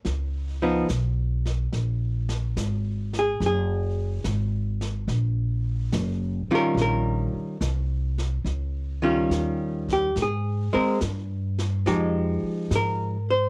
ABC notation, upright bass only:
X:1
M:4/4
L:1/8
Q:"Swing" 1/4=71
K:Ebmix
V:1 name="Upright bass" clef=bass
D,,2 _C,,2 B,,,2 A,,,2 | _G,,,2 A,,,2 B,,,2 G,,, z | B,,, z C,,2 D,,2 E,,2 | A,, z G,,2 F,, z A,,2 |]